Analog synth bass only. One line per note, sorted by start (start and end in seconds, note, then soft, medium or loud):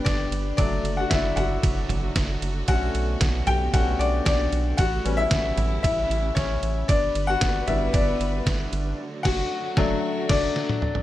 0.06 0.27 G1 loud
0.31 0.53 G1 loud
0.58 0.80 F#1 loud
0.83 1.05 F#1 loud
1.11 1.32 F#1 medium
1.36 1.58 F#1 loud
1.63 1.85 F#1 loud
1.89 2.11 F#1 medium
2.16 2.37 F#1 loud
2.42 2.63 F#1 loud
2.68 2.90 B1 loud
2.94 3.16 B1 medium
3.21 3.42 B1 medium
3.47 3.69 B1 loud
3.73 3.95 B1 loud
3.99 4.21 B1 loud
4.26 4.48 B1 loud
4.52 4.74 B1 loud
4.79 5.00 A1 loud
5.05 5.27 A1 loud
5.31 5.53 A1 medium
5.57 5.79 A1 loud
5.84 6.05 A1 loud
6.10 6.31 A1 loud
6.36 6.58 A1 loud
6.62 6.84 A1 loud
6.89 7.10 G1 loud
7.15 7.37 G1 loud
7.41 7.63 G1 loud
7.68 7.89 G1 loud
7.94 8.15 G1 loud
8.20 8.41 G1 medium
8.46 8.68 G1 medium
8.72 8.94 G1 loud
9.25 9.43 F#1 loud
9.77 9.95 F#1 loud
10.29 10.47 F#1 loud